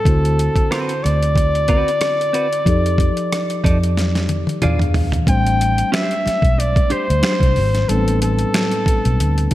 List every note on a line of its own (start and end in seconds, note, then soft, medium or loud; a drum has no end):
0.00 0.73 A4 medium
0.04 0.48 D2 medium
0.04 2.62 D3 medium
0.04 2.62 C4 medium
0.04 2.63 E4 medium
0.04 2.63 F#4 medium
0.04 kick loud
0.04 closed hi-hat medium
0.09 2.64 C5 medium
0.25 closed hi-hat soft
0.39 closed hi-hat medium
0.56 kick medium
0.56 closed hi-hat soft
0.71 0.92 C4 medium
0.71 0.92 F#4 medium
0.71 0.93 B4 medium
0.71 1.05 C5 medium
0.71 cross-stick loud
0.71 closed hi-hat medium
0.89 closed hi-hat medium
1.03 1.83 D2 medium
1.03 4.62 D5 loud
1.03 cross-stick soft
1.03 closed hi-hat medium
1.23 closed hi-hat soft
1.36 muted clean electric guitar stroke soft
1.36 kick medium
1.36 closed hi-hat medium
1.55 closed hi-hat soft
1.68 1.89 C4 medium
1.68 1.90 F#4 medium
1.68 1.90 B4 medium
1.68 kick medium
1.68 closed hi-hat medium
1.88 closed hi-hat soft
2.01 cross-stick loud
2.01 closed hi-hat medium
2.21 closed hi-hat soft
2.33 2.46 C4 medium
2.33 2.47 F#4 medium
2.33 2.47 B4 medium
2.33 closed hi-hat medium
2.53 closed hi-hat soft
2.65 3.09 F2 loud
2.65 4.57 F3 medium
2.65 4.58 D#4 medium
2.65 4.59 G4 medium
2.65 4.59 A4 medium
2.65 kick loud
2.65 closed hi-hat medium
2.70 4.60 D5 medium
2.86 closed hi-hat medium
2.98 kick medium
2.98 closed hi-hat medium
3.17 closed hi-hat soft
3.32 cross-stick medium
3.32 closed hi-hat medium
3.50 closed hi-hat soft
3.64 4.44 F2 medium
3.64 3.77 D#4 medium
3.64 3.77 A4 medium
3.64 3.77 D5 medium
3.64 kick medium
3.64 cross-stick soft
3.64 closed hi-hat medium
3.83 closed hi-hat soft
3.97 snare medium
3.97 closed hi-hat medium
4.15 snare soft
4.15 closed hi-hat soft
4.29 closed hi-hat medium
4.29 high tom medium
4.47 closed hi-hat soft
4.47 high tom medium
4.62 5.18 E2 medium
4.62 5.27 E3 medium
4.62 5.28 D4 medium
4.62 4.78 F4 loud
4.62 4.79 G#4 loud
4.62 5.28 G#4 medium
4.62 4.79 D5 loud
4.62 5.28 F5 medium
4.62 closed hi-hat medium
4.62 mid tom medium
4.79 closed hi-hat soft
4.79 mid tom medium
4.94 floor tom medium
4.94 open hi-hat soft
5.12 closed hi-hat medium
5.12 floor tom medium
5.26 5.82 A1 loud
5.26 7.84 G3 medium
5.26 7.83 A3 medium
5.26 7.85 C4 medium
5.26 7.85 D4 medium
5.26 5.89 G5 loud
5.26 kick loud
5.26 closed hi-hat medium
5.30 7.86 C5 medium
5.47 closed hi-hat medium
5.61 closed hi-hat medium
5.78 closed hi-hat medium
5.92 6.13 D4 medium
5.92 6.14 G4 medium
5.92 6.14 C5 loud
5.92 6.61 E5 loud
5.92 finger snap medium
5.92 snare loud
5.92 closed hi-hat medium
6.11 closed hi-hat soft
6.26 muted fingered electric bass stroke medium
6.26 snare soft
6.26 closed hi-hat medium
6.42 6.82 B1 medium
6.42 kick loud
6.42 closed hi-hat soft
6.58 6.94 D5 medium
6.58 muted clean electric guitar stroke soft
6.58 closed hi-hat medium
6.76 kick loud
6.76 closed hi-hat soft
6.90 7.06 D4 medium
6.90 7.07 G4 medium
6.90 7.07 C5 loud
6.90 7.90 C5 loud
6.90 muted fingered electric bass stroke soft
6.90 closed hi-hat medium
7.10 7.21 D2 medium
7.10 closed hi-hat medium
7.23 7.39 D4 loud
7.23 7.39 G4 medium
7.23 7.40 C5 loud
7.23 finger snap medium
7.23 snare loud
7.23 closed hi-hat medium
7.40 7.59 C2 medium
7.40 kick medium
7.40 closed hi-hat soft
7.56 7.84 G#1 loud
7.56 open hi-hat soft
7.75 snare soft
7.75 closed hi-hat medium
7.87 8.43 A1 loud
7.87 9.47 A2 medium
7.87 9.48 G3 medium
7.87 7.96 B3 soft
7.87 9.49 D4 medium
7.87 8.21 A4 medium
7.87 closed hi-hat medium
7.92 9.50 B4 medium
7.96 9.51 C4 medium
8.08 closed hi-hat medium
8.22 9.54 A4 medium
8.22 closed hi-hat medium
8.39 closed hi-hat soft
8.54 finger snap medium
8.54 snare loud
8.54 closed hi-hat medium
8.72 closed hi-hat medium
8.86 muted fingered electric bass stroke soft
8.86 kick medium
8.86 closed hi-hat medium
9.05 9.17 B1 medium
9.05 closed hi-hat soft
9.20 9.47 D2 loud
9.20 closed hi-hat medium
9.38 closed hi-hat soft
9.51 closed hi-hat medium